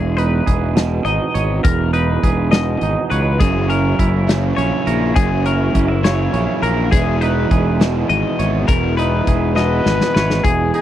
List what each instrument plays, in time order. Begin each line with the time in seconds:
Already playing: fingered electric bass E1, clean electric guitar E2 G#4
0.17 clean electric guitar D#4 B4, closed hi-hat
0.46 fingered electric bass E1, clean electric guitar G#4, kick, closed hi-hat
0.75 clean electric guitar B2, snare, closed hi-hat
1.05 fingered electric bass G#1, clean electric guitar D#4 D#5, closed hi-hat
1.34 fingered electric bass G#1, clean electric guitar C#5, closed hi-hat
1.63 fingered electric bass E1, clean electric guitar E2 A#4, kick, closed hi-hat
1.93 clean electric guitar D#4 B4, closed hi-hat
2.23 fingered electric bass E1, clean electric guitar G#4, kick, closed hi-hat
2.51 clean electric guitar B2 D#5, snare, closed hi-hat
2.81 fingered electric bass G#1, clean electric guitar D#4, closed hi-hat
3.10 fingered electric bass C#2, clean electric guitar B4 C#5, closed hi-hat
3.39 fingered electric bass F#1, overdriven electric guitar F#2 C#3 E3 A#3 E4, clean electric guitar F#2 G#4, kick, closed hi-hat
3.68 overdriven electric guitar E3 A#3 E4, clean electric guitar C#4 A#4, closed hi-hat
3.99 fingered electric bass F#1, clean electric guitar E4, kick, closed hi-hat
4.27 overdriven electric guitar F#2 C#3 E3 A#3 E4, clean electric guitar C#3, snare, closed hi-hat
4.57 fingered electric bass A#1, overdriven electric guitar C#3 E3 A#3 E4, clean electric guitar C#4 C#5, closed hi-hat
4.85 fingered electric bass A#1, overdriven electric guitar E3 A#3 E4, clean electric guitar A#4, closed hi-hat
5.15 fingered electric bass F#1, overdriven electric guitar F#2 C#3 E3 A#3 E4, clean electric guitar F#2 G#4, kick, closed hi-hat
5.44 overdriven electric guitar E3 A#3 E4, clean electric guitar C#4 A#4, closed hi-hat
5.74 fingered electric bass F#1, clean electric guitar C#4, kick, closed hi-hat
5.88 clean electric guitar E4
6.03 overdriven electric guitar F#2 C#3 E3 A#3 E4, clean electric guitar C#3 C#5, snare, closed hi-hat
6.32 fingered electric bass A#1, overdriven electric guitar C#3 E3 A#3 E4, clean electric guitar C#4, closed hi-hat
6.62 fingered electric bass A#1, overdriven electric guitar E3 A#3 E4, clean electric guitar A#4, closed hi-hat
6.91 fingered electric bass E1, clean electric guitar E2 G#4, overdriven electric guitar E3 G#3 B3 E4, kick, closed hi-hat
7.21 overdriven electric guitar G#3 B3 E4, clean electric guitar D#4 B4, closed hi-hat
7.51 fingered electric bass E1, clean electric guitar G#4, kick, closed hi-hat
7.80 clean electric guitar B2, overdriven electric guitar E3 G#3 B3 E4, snare, closed hi-hat
8.09 fingered electric bass G#1, overdriven electric guitar E3 G#3 B3 E4, clean electric guitar D#5, closed hi-hat
8.38 fingered electric bass G#1, overdriven electric guitar G#3 B3 E4, clean electric guitar C#5, closed hi-hat
8.66 fingered electric bass E1, clean electric guitar E2 A#4, overdriven electric guitar E3 G#3 B3 E4, kick, closed hi-hat
8.96 overdriven electric guitar G#3 B3 E4, clean electric guitar D#4 B4, closed hi-hat
9.27 fingered electric bass E1, clean electric guitar G#4, kick, closed hi-hat
9.55 clean electric guitar B2 D#5, overdriven electric guitar E3 G#3 B3 E4, trumpet B4, snare
9.85 fingered electric bass G#1, overdriven electric guitar E3 G#3 B3 E4, snare
10.01 snare
10.14 fingered electric bass G#1, overdriven electric guitar G#3 B3 E4, clean electric guitar B4 C#5, snare
10.30 snare
10.44 fingered electric bass E1, clean electric guitar E2 G#4, trumpet G#4, kick, closed hi-hat
10.74 clean electric guitar D#4, trumpet G#4, closed hi-hat